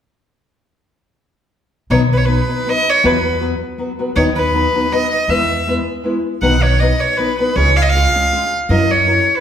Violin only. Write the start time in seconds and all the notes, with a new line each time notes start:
1.91 C#5
2.13 B4
2.18 C#5
2.25 B4
2.69 D#5
2.90 C#5
3.06 B4
4.16 C#5
4.35 B4
4.92 D#5
5.12 D#5
5.29 E5
6.42 F#5
6.62 C#5
6.80 D#5
7.00 C#5
7.17 B4
7.39 B4
7.56 C#5
7.77 F5
7.82 D#5
7.89 F5
8.70 D#5
8.91 C#5
9.36 B4